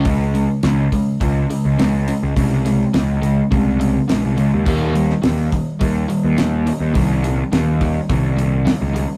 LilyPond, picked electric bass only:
\new Staff \with { instrumentName = "Picked electric bass" } { \clef bass \time 4/4 \key des \lydian \tempo 4 = 104 des,4 des,8 r8 des,8 r16 des,4 des,16 | c,4 des,4 c,4 bes,,16 c,16 des,16 ees,16 | ees,4 ees,8 r8 ees,8 r16 ees,4 ees,16 | c,4 ees,4 c,4~ c,16 des,8 r16 | }